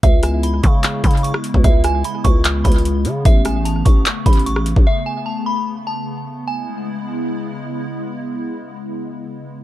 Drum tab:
HH |x-----x-----x-----x-----x-----x-x-x-x-----x-----|x-----x-----x-----x-----x-----x-x-x-x-----x-----|x-----x-----x-----x-----x-----x-x-x-x-----x-----|------------------------------------------------|
CP |------------------------x-----------------------|------------------------x-----------------------|------------------------x-----------------------|------------------------------------------------|
SD |------r--------------------------------r--------|------r-----------------------------------------|------r--------------------------------r--------|------------------------------------------------|
BD |o-----------------o-----------o--------------o--|o-----------------o-----------o-----------------|o-----------------o-----------o--------------o--|------------------------------------------------|

HH |------------------------------------------------|------------------------------------------------|
CP |------------------------------------------------|------------------------------------------------|
SD |------------------------------------------------|------------------------------------------------|
BD |------------------------------------------------|------------------------------------------------|